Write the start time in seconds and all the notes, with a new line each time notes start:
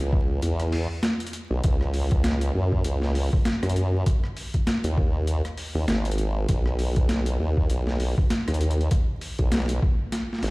0.00 C#2
0.13 kick
0.42 E2, closed hi-hat
0.60 cross-stick, closed hi-hat
0.72 open hi-hat
1.03 snare, closed hi-hat
1.20 closed hi-hat
1.27 closed hi-hat
1.33 closed hi-hat
1.51 B1
1.64 C#2, kick, closed hi-hat
1.81 cross-stick
1.94 open hi-hat
2.11 kick, closed hi-hat
2.24 snare, closed hi-hat
2.41 closed hi-hat
2.55 F#2
2.72 kick
2.84 C#2, closed hi-hat
3.02 snare
3.15 open hi-hat
3.33 kick
3.45 snare, closed hi-hat
3.63 F#2, cross-stick, closed hi-hat
3.69 closed hi-hat
3.76 closed hi-hat
4.06 kick, closed hi-hat
4.24 cross-stick
4.37 open hi-hat
4.54 kick, closed hi-hat
4.67 snare, closed hi-hat
4.84 D#2, closed hi-hat
4.98 kick
5.27 closed hi-hat
5.45 cross-stick, closed hi-hat
5.57 open hi-hat
5.75 D#2
5.88 G#1, snare, closed hi-hat
6.05 closed hi-hat
6.12 closed hi-hat
6.18 closed hi-hat
6.49 B1, kick, closed hi-hat
6.66 cross-stick
6.79 open hi-hat
6.96 kick, closed hi-hat
7.09 snare, closed hi-hat
7.26 closed hi-hat
7.39 D#2
7.57 kick
7.70 B1, closed hi-hat
7.87 snare
8.00 open hi-hat
8.18 kick
8.30 snare, closed hi-hat
8.48 D#2, cross-stick, closed hi-hat
8.54 closed hi-hat
8.61 closed hi-hat
8.71 closed hi-hat
8.81 closed hi-hat
8.91 kick, closed hi-hat
9.21 open hi-hat
9.39 B1, kick, closed hi-hat
9.52 snare, closed hi-hat
9.54 snare
9.57 snare
9.60 snare
9.66 snare, closed hi-hat
9.82 kick
10.12 snare, closed hi-hat
10.33 snare
10.39 snare
10.43 G#1, snare, closed hi-hat, open hi-hat